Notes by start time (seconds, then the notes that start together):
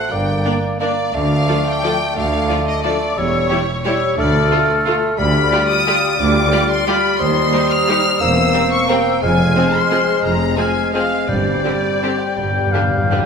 Already playing: A3 C5 F#5 F#6
0.11 G1 G2 A#3 D5 G5 D6
0.45 A#3 D4 A#4 D5
0.80 A#3 D4 A#4 D5 D6
1.14 D2 A3 D5 F5 D6
1.48 F3 A3 D4 F4 A4 D5
1.66 G5
1.83 F3 A3 D4 F4 A4 D5
2.16 D2 A3 D5 F5 D6
2.49 F3 A3 D4 F4 A4 D5
2.67 D#5
2.83 F3 A3 D4 F4 A4 D5 D6
3.17 E1 E2 G3 C#5 E6
3.49 G3 E4 G4 C#5
3.84 G3 E4 G4 C#5 E6
4.18 D2 A3 A4 D5 F6
4.51 A3 F4 A4
4.86 A3 F4 A4
5.18 D2 G3 F4 D5 B5 F6
5.52 G3 F4 G4 D5
5.69 D#6
5.87 G3 F4 G4 D5
6.19 D2 G3 D5 D6 F6
6.52 G3 F4 G4 D5
6.70 C6
6.86 G3 F4 G4 D5 B5 F6
7.19 D#2 G3 D#4 C5 C6 D#6
7.52 G3 D#4 G4 C5
7.70 F6
7.88 G3 D#4 G4 C5
8.20 E1 E2 A#3 C4 C5 E6
8.53 G3 C4 A#4 C5
8.71 C#6
8.88 G3 A#3 C4 A#4 C5 G5 E6
9.22 F1 F2 G#3 C4 C5 G#5 F6
9.56 F3 C4 G#4 C5
9.74 C6
9.90 F3 C4 G#4 C5
10.23 F1 F2 A#5
10.57 F3 G#3 C4 G#4 C5 G#5 F6
10.93 F3 G#3 C4 G#4 C5 F5 F6
11.28 G1 G2 G3 C4 C5 D5 G6
11.64 D3 C4 G4 C5 D5
12.02 D3 C4 G4 C5
12.20 G5
12.37 G1 G2 G3 B3 G6
12.45 G2
12.52 G2
12.59 G2
12.67 G2
12.72 G2 D3 D4 G4 B4 F5
12.82 G2
12.90 G2
12.98 G2
13.05 G2
13.11 G2 D3 D4 G4 B4
13.20 G2